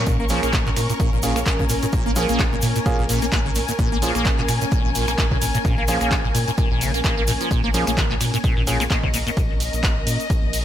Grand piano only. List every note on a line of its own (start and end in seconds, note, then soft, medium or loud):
0.30 0.52 A#3 medium
0.30 0.52 C#4 medium
0.30 0.52 F4 medium
0.30 0.52 G#4 medium
1.23 1.38 A#3 medium
1.23 1.38 C#4 medium
1.23 1.38 F4 medium
1.23 1.38 G#4 medium
2.16 2.38 A#3 loud
2.16 2.38 C#4 medium
2.16 2.38 F4 medium
2.16 2.38 G#4 loud
2.86 3.00 A#3 loud
2.86 3.00 C#4 medium
2.86 3.00 F4 medium
2.86 3.00 G#4 loud
4.02 4.24 A#3 medium
4.02 4.24 C#4 medium
4.02 4.24 F4 medium
4.02 4.24 G#4 medium
5.88 6.10 A#3 medium
5.88 6.10 C#4 medium
5.88 6.10 F4 medium
5.88 6.10 G#4 loud
7.74 7.96 A#3 medium
7.74 7.96 C#4 medium
7.74 7.96 F4 medium
7.74 7.96 G#4 medium
8.67 8.82 A#3 medium
8.67 8.82 C#4 medium
8.67 8.82 F4 medium
8.67 8.82 G#4 medium